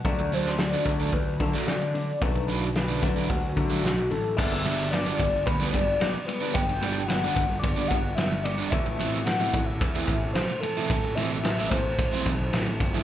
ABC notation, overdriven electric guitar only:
X:1
M:4/4
L:1/16
Q:1/4=110
K:G
V:1 name="Overdriven electric guitar"
z2 [D,F,A,D] z2 [D,F,A,D] z [D,F,A,D] z3 [D,F,A,D] z4 | z2 [D,F,A,D] z2 [D,F,A,D] z [D,F,A,D] z3 [D,F,A,D] z4 | z2 [D,G,B,D] z2 [D,G,B,D] z3 [D,G,B,D] z4 z [D,G,B,D] | z2 [D,G,B,D] z2 [D,G,B,D] z3 [D,G,B,D] z4 z [D,G,B,D] |
z2 [E,A,CE] z2 [E,A,CE] z3 [E,A,CE] z4 z [E,A,CE] | z2 [E,A,CE] z2 [E,A,CE] z3 [E,A,CE] z4 z [E,A,CE] |]